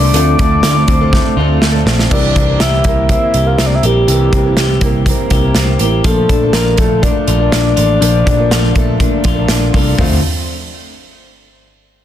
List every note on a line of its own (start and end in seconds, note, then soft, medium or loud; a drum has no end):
0.00 0.13 F3 soft
0.00 0.11 A3 medium
0.00 0.13 A3 medium
0.00 0.11 A#3 medium
0.00 0.15 A#3 medium
0.00 0.14 D4 medium
0.00 0.19 D4 medium
0.00 0.20 F4 medium
0.00 0.14 A4 medium
0.00 1.86 D6 loud
0.14 0.34 D2 loud
0.14 0.37 D3 medium
0.14 0.38 F3 medium
0.14 0.38 A3 medium
0.14 2.07 C4 medium
0.14 0.38 C4 medium
0.14 2.07 D4 medium
0.14 0.39 D4 medium
0.14 2.08 F4 medium
0.14 2.08 A4 medium
0.14 0.39 A4 medium
0.14 closed hi-hat loud
0.38 0.59 D2 loud
0.38 0.75 D3 medium
0.38 0.76 F3 medium
0.38 1.11 A3 medium
0.38 0.76 C4 medium
0.38 0.76 D4 medium
0.38 0.74 A4 medium
0.38 kick medium
0.38 closed hi-hat medium
0.63 0.84 D2 medium
0.63 1.36 F4 medium
0.63 snare loud
0.63 closed hi-hat loud
0.75 1.01 C4 medium
0.75 1.00 D4 medium
0.75 1.00 A4 medium
0.88 1.18 D2 loud
0.88 1.85 C4 medium
0.88 kick medium
0.88 closed hi-hat medium
1.01 1.39 D3 medium
1.01 1.36 F3 medium
1.01 1.37 C4 medium
1.01 1.38 D4 medium
1.01 1.38 A4 medium
1.12 1.60 A3 medium
1.12 kick loud
1.12 snare medium
1.37 1.57 D2 loud
1.37 1.74 F3 medium
1.37 1.75 C4 medium
1.37 1.73 D4 medium
1.37 2.11 F4 medium
1.41 1.71 A4 medium
1.61 1.82 D2 loud
1.61 2.16 A3 medium
1.61 snare loud
1.72 2.11 C4 medium
1.72 2.11 D4 medium
1.72 2.10 A4 medium
1.86 2.06 A#1 medium
1.86 2.35 C4 medium
1.86 snare loud
1.99 snare loud
2.10 2.31 C2 medium
2.10 4.07 E3 medium
2.10 2.47 G3 medium
2.10 2.48 A#3 medium
2.10 4.04 C4 medium
2.10 4.04 E4 medium
2.10 2.49 E4 medium
2.10 2.59 G4 medium
2.10 4.04 A#4 medium
2.10 2.46 A#4 medium
2.10 2.62 D5 loud
2.10 kick loud
2.10 crash medium
2.35 2.56 C2 medium
2.35 3.08 C4 medium
2.35 kick medium
2.35 closed hi-hat medium
2.48 2.84 A#3 soft
2.48 2.86 E4 soft
2.48 2.85 A#4 medium
2.60 2.81 C2 medium
2.60 3.33 G4 medium
2.60 3.10 E5 loud
2.60 snare loud
2.60 closed hi-hat medium
2.84 3.15 C2 loud
2.84 3.07 G3 medium
2.84 4.82 A#3 medium
2.84 3.09 A#3 medium
2.84 3.10 E4 medium
2.84 3.11 A#4 medium
2.84 kick medium
2.84 closed hi-hat medium
3.09 3.46 G3 medium
3.09 3.47 A#3 medium
3.09 3.57 C4 medium
3.09 3.46 E4 medium
3.09 3.45 A#4 medium
3.09 3.48 E5 loud
3.09 kick medium
3.09 closed hi-hat medium
3.34 3.54 C2 medium
3.34 3.82 G4 medium
3.34 closed hi-hat medium
3.46 3.83 A#3 soft
3.46 3.84 E4 soft
3.46 3.83 A#4 medium
3.46 3.59 F5 medium
3.57 4.32 C4 medium
3.57 3.68 E5 medium
3.57 snare loud
3.57 closed hi-hat loud
3.66 3.76 D5 medium
3.75 3.87 E5 medium
3.83 4.04 A#1 medium
3.83 4.07 G3 medium
3.83 4.08 A#3 medium
3.83 4.09 E4 medium
3.83 4.07 G4 medium
3.83 4.83 G4 medium
3.83 4.10 A#4 medium
3.83 closed hi-hat medium
4.07 4.28 C2 medium
4.07 6.05 E3 medium
4.07 4.45 G3 medium
4.07 4.46 A#3 medium
4.07 5.28 C4 medium
4.07 5.29 E4 medium
4.07 4.46 E4 medium
4.07 4.56 G4 medium
4.07 5.29 A#4 medium
4.07 closed hi-hat medium
4.12 4.43 A#4 medium
4.33 4.53 C2 medium
4.33 5.05 C4 medium
4.33 kick medium
4.33 closed hi-hat medium
4.45 4.81 A#3 medium
4.45 4.82 E4 medium
4.45 4.82 A#4 medium
4.56 4.77 C2 medium
4.56 5.30 G4 medium
4.56 snare loud
4.56 closed hi-hat medium
4.81 5.12 C2 medium
4.81 5.04 G3 medium
4.81 6.78 A#3 medium
4.81 5.06 A#3 medium
4.81 5.07 E4 medium
4.81 5.08 A#4 medium
4.81 kick medium
4.81 closed hi-hat medium
5.05 5.43 G3 medium
5.05 5.44 A#3 medium
5.05 5.54 C4 medium
5.05 5.42 E4 medium
5.05 5.41 A#4 medium
5.05 kick medium
5.05 closed hi-hat medium
5.30 5.51 C2 loud
5.30 6.05 C4 medium
5.30 6.05 E4 medium
5.30 5.80 G4 medium
5.30 6.05 A#4 medium
5.30 kick medium
5.30 closed hi-hat medium
5.42 5.79 A#3 medium
5.42 5.80 E4 medium
5.42 5.80 A#4 medium
5.55 5.75 C2 medium
5.55 6.10 C4 medium
5.55 snare loud
5.55 closed hi-hat loud
5.79 6.00 A1 medium
5.79 6.04 G3 medium
5.79 6.05 A#3 medium
5.79 6.05 E4 medium
5.79 6.05 G4 medium
5.79 6.06 A#4 medium
5.79 closed hi-hat medium
6.04 6.25 A#1 loud
6.04 8.01 F3 medium
6.04 7.97 A#3 medium
6.04 6.42 A#3 medium
6.04 7.98 D4 medium
6.04 6.42 D4 medium
6.04 6.53 F4 medium
6.04 7.98 A4 medium
6.04 6.55 A4 loud
6.04 6.41 A4 medium
6.04 kick loud
6.04 closed hi-hat medium
6.29 6.50 A#1 medium
6.29 7.02 D4 medium
6.29 kick medium
6.29 closed hi-hat medium
6.42 6.77 F3 soft
6.42 6.78 A#3 soft
6.42 6.79 D4 medium
6.42 6.79 A4 medium
6.53 6.74 A#1 loud
6.53 7.27 F4 medium
6.53 6.81 A#4 loud
6.53 snare loud
6.53 closed hi-hat medium
6.77 7.09 A#1 medium
6.77 7.02 F3 medium
6.77 8.76 A3 medium
6.77 7.03 A#3 medium
6.77 7.04 D4 medium
6.77 7.04 A4 medium
6.77 kick medium
6.77 closed hi-hat medium
6.82 7.05 A4 medium
7.02 7.40 F3 medium
7.02 7.41 A#3 medium
7.02 7.51 D4 medium
7.02 7.40 D4 medium
7.02 9.49 D5 loud
7.02 kick medium
7.02 closed hi-hat medium
7.06 7.38 A4 medium
7.27 7.48 A#1 loud
7.27 7.76 F4 medium
7.27 closed hi-hat medium
7.40 7.74 F3 soft
7.40 7.76 A#3 soft
7.40 7.77 D4 medium
7.40 7.77 A4 medium
7.52 7.73 A#1 loud
7.52 8.26 D4 medium
7.52 snare loud
7.52 closed hi-hat loud
7.76 7.98 A1 medium
7.76 8.00 F3 medium
7.76 8.01 A#3 medium
7.76 8.02 D4 medium
7.76 8.01 F4 medium
7.76 8.03 A4 medium
7.76 closed hi-hat medium
8.00 8.22 A#1 loud
8.00 8.38 F3 medium
8.00 10.69 F3 medium
8.00 9.94 A#3 medium
8.00 8.38 A#3 medium
8.00 9.94 D4 medium
8.00 8.37 D4 medium
8.00 8.51 F4 medium
8.00 9.95 A4 medium
8.00 8.35 A4 medium
8.00 closed hi-hat medium
8.26 8.47 A#1 medium
8.26 9.00 D4 medium
8.26 kick medium
8.26 closed hi-hat medium
8.37 8.73 F3 medium
8.37 8.74 A#3 medium
8.37 8.74 D4 medium
8.37 8.75 A4 medium
8.51 8.71 A#1 medium
8.51 9.25 F4 medium
8.51 snare loud
8.51 closed hi-hat medium
8.74 9.06 A#1 medium
8.74 8.97 F3 medium
8.74 9.97 A3 medium
8.74 8.98 A#3 medium
8.74 8.99 D4 medium
8.74 9.00 A4 medium
8.74 kick medium
8.74 closed hi-hat medium
8.98 9.36 F3 medium
8.98 9.37 A#3 medium
8.98 9.36 D4 medium
8.98 9.49 D4 medium
8.98 9.34 A4 medium
8.98 kick medium
8.98 closed hi-hat medium
9.24 9.45 A#1 loud
9.24 9.74 F4 medium
9.24 kick medium
9.24 closed hi-hat medium
9.35 9.71 F3 medium
9.35 9.72 A#3 medium
9.35 9.73 D4 medium
9.35 9.73 A4 medium
9.48 9.69 A#1 medium
9.48 9.99 D4 medium
9.48 snare loud
9.48 closed hi-hat loud
9.72 9.94 C2 medium
9.72 9.97 F3 medium
9.72 9.98 A#3 medium
9.72 9.98 D4 medium
9.72 10.00 F4 medium
9.72 9.99 A4 medium
9.72 kick medium
9.72 open hi-hat medium
9.98 10.21 D2 loud
9.98 10.18 D3 medium
9.98 10.18 F3 medium
9.98 10.18 A3 medium
9.98 10.21 C4 medium
9.98 10.18 C4 medium
9.98 10.19 C4 medium
9.98 10.21 D4 medium
9.98 10.19 D4 medium
9.98 10.22 F4 medium
9.98 10.19 F4 medium
9.98 10.19 A4 medium
9.98 kick loud
9.98 floor tom loud
9.98 open hi-hat medium